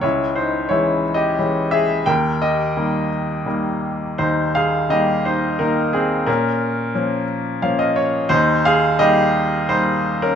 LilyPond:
<<
  \new Staff \with { instrumentName = "Upright piano" } { \time 3/4 \key ees \mixolydian \tempo 4 = 87 <fes' des''>8 <ees' c''>8 \tuplet 3/2 { <fes' des''>8. r16 <g' ees''>8~ } <g' ees''>8 <aes' fes''>8 | <bes' g''>8 <g' ees''>4 r4. | <ees' c''>8 <aes' f''>8 <g' ees''>8 <ees' c''>8 <ees' bes'>8 <c' aes'>8 | <des' bes'>4. r8 f''16 ees''16 des''8 |
<ees' c''>8 <aes' f''>8 <g' ees''>4 c''8. <des' bes'>16 | }
  \new Staff \with { instrumentName = "Upright piano" } { \clef bass \time 3/4 \key ees \mixolydian des,4 <fes aes des'>4 <fes aes des'>4 | ees,4 <ees g bes>4 <ees g bes>4 | ees,4 <ees g bes>4 <ees bes>4 | bes,4 <f bes des'>4 <f bes des'>4 |
ees,4 <g bes ees'>4 <g bes ees'>4 | }
>>